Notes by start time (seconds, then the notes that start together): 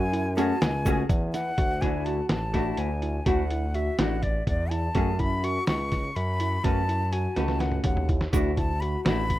Already playing: F#2 G#5
0.13 E4, closed hi-hat
0.36 A3 C#4 F#4 G#4 A5, closed hi-hat, shaker
0.61 C#2 G#5, snare, closed hi-hat, shaker
0.85 A3 C#4 F#4 G#4, kick, closed hi-hat, shaker
1.09 E2, kick, closed hi-hat, shaker
1.33 E4 F#5, snare, closed hi-hat, shaker
1.58 D2 F#4, kick, closed hi-hat
1.81 A3 D4 E4 F#4 G#5, kick, closed hi-hat
2.05 F#4 A5, closed hi-hat
2.29 A1 A5, snare, closed hi-hat
2.54 A3 D4 E4 F#4, kick, snare, closed hi-hat
2.77 D2 G#5, closed hi-hat
3.02 E4, closed hi-hat
3.26 D2 A3 D4 E4 F#4 F#5, kick, closed hi-hat
3.50 E4, closed hi-hat
3.74 F#4 E5, closed hi-hat
3.99 A1 A3 D4 E4 F#4 F#5, snare, closed hi-hat
4.23 D5, kick, closed hi-hat
4.47 E2 D5, kick, closed hi-hat
4.70 E4 A5, closed hi-hat
4.95 F#2 A3 C#4 F#4 G#4, kick, closed hi-hat
5.19 E4 B5, kick, closed hi-hat
5.43 F#4 C#6, closed hi-hat
5.67 C#2 C#6, snare, closed hi-hat
5.92 kick, snare, closed hi-hat
6.16 F#2 B5, closed hi-hat
6.40 E4, closed hi-hat
6.64 F#2 A3 C#4 F#4 B4 A5, kick, closed hi-hat
6.89 E4, closed hi-hat
7.12 F#4 G#5, closed hi-hat
7.36 C#2 A3 C#4 F#4 B4 A5, snare, closed hi-hat
7.48 snare
7.60 F#5, snare, closed hi-hat
7.72 mid tom
7.84 D#2 F#5, kick, closed hi-hat, mid tom
7.97 mid tom
8.09 E4, kick, closed hi-hat
8.21 snare
8.33 D2 A3 D4 E4 F#4, kick, closed hi-hat, shaker
8.57 E4 A5, kick, closed hi-hat
8.80 F#4 B5, closed hi-hat
9.05 A1 A3 D4 E4 F#4 B5, snare, closed hi-hat
9.30 kick, closed hi-hat